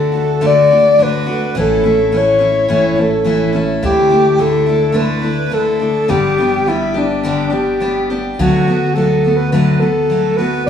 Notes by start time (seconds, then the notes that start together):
Already playing: D2 D3 A3 D4 F#4 A4
0.12 A3 D4 F#4
0.41 D3 A3 D4 F#4
0.46 D5
0.71 A3 D4 F#4
0.98 D3 A3 D4 F#4
1.03 B4
1.26 A3 D4 F#4
1.55 A1 A2 E3 A3 C#4 E4
1.60 A4
1.83 A3 C#4 E4
2.12 E3 A3 C#4 E4
2.17 C#5
2.39 A3 C#4 E4
2.68 A2 E3 A3 C#4 E4
2.96 A3 C#4 E4
3.01 A4
3.24 E3 A3 C#4 E4
3.52 A3 C#4 E4
3.83 D2 D3 A3 D4 E4 G4
4.10 A3 D4 E4
4.38 D3 A3 D4 E4 A4
4.66 A3 D4 E4
4.92 D3 A3 D4 E4 B4
5.22 A3 D4 E4
5.50 D3 A3 D4 E4
5.54 A4
5.79 A3 D4 E4
6.08 G1 G2 D3 G3 B3 D4 G4
6.38 G3 B3 D4 G4
6.66 G3 B3 D4 E4 G4
6.94 G3 B3 D4 G4
7.23 G2 D3 G3 B3 D4 G4
7.50 G3 B3 D4 G4
7.54 G4
7.80 G3 B3 D4 G4
8.10 G3 B3 D4 G4
8.39 D2 D3 F#3 A3 B3 F#4
8.68 A3 B3 F#4
8.95 F#3 A3 B3 F#4 A4
9.24 A3 B3 F#4
9.36 B4
9.52 D3 F#3 A3 B3 F#4 B4
9.80 A3 B3 F#4 A4
10.10 F#3 A3 B3 F#4
10.37 B3 F#4 B4
10.41 A3
10.67 D5